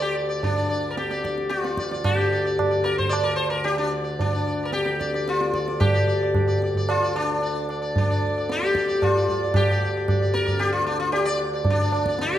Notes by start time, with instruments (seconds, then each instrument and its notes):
Already playing: harmonium D2 D3
0.02 sitar G4
0.14 sitar D5
0.29 sitar D5
0.43 sitar D4, tabla tin, tabla ge
0.56 sitar D5
0.69 sitar D5
0.91 sitar A#4
0.97 sitar G4, tabla te
1.11 sitar D5, tabla te
1.24 sitar D5, tabla ke
1.38 tabla te
1.49 sitar F4, tabla te
1.63 sitar D5, tabla te
1.77 sitar D5, tabla ke
1.91 sitar D5, tabla te
2.04 harmonium D2 D3, sitar G4, tabla na, tabla ge
2.18 sitar D5
2.32 sitar D5
2.45 sitar D5
2.59 tabla na, tabla ge
2.71 sitar D5
2.84 sitar A#4, tabla te
2.98 sitar C5, tabla ge
3.09 sitar D5, tabla na
3.23 sitar A#4
3.36 sitar C5, tabla na
3.50 sitar A#4
3.64 sitar G4, tabla tin
3.78 sitar D4
3.91 sitar D5
4.04 sitar D5
4.19 sitar D4, tabla tin, tabla ge
4.33 sitar D5
4.47 sitar D5
4.65 sitar A#4
4.73 sitar G4, tabla te
4.84 sitar D5, tabla te
4.99 sitar D5, tabla ke
5.14 sitar D5, tabla te
5.28 sitar F4, tabla te
5.41 tabla te
5.54 sitar D5, tabla ke
5.68 sitar D5, tabla te
5.80 sitar G4, tabla na, tabla ge
5.94 sitar D5
6.08 sitar D5
6.23 sitar D5
6.35 sitar D5, tabla na, tabla ge
6.47 sitar D5
6.62 sitar D5, tabla te
6.75 sitar D5, tabla ge
6.89 sitar F4, tabla na
7.03 sitar D5
7.16 sitar D4, tabla na
7.42 sitar D5, tabla tin
7.69 sitar D5, tabla na
7.82 sitar D5
7.96 sitar D4, tabla tin, tabla ge
8.10 sitar D5
8.38 sitar D5
8.50 sitar G4, tabla te
8.63 sitar D5, tabla te
8.75 sitar D5, tabla ke
8.88 sitar D5, tabla te
9.02 sitar F4, tabla na, tabla ge
9.15 sitar D5
9.28 sitar D5, tabla ge
9.43 sitar D5
9.54 sitar G4, tabla na, tabla ge
9.71 sitar D5
9.85 sitar D5
9.97 sitar D5
10.08 sitar D5, tabla na, tabla ge
10.22 sitar D5
10.34 sitar A#4, tabla te
10.46 sitar D5, tabla ge
10.59 sitar G4, tabla te
10.72 sitar F4
10.87 sitar D4, tabla te
11.00 sitar F4
11.12 sitar G4, tabla tin
11.25 sitar D5
11.39 tabla na
11.53 sitar D5
11.65 tabla tin, tabla ge
11.70 sitar D4
11.81 sitar D5
11.92 sitar D5, tabla na
12.06 sitar D5, tabla ke
12.19 sitar G4, tabla te
12.33 sitar D5, tabla te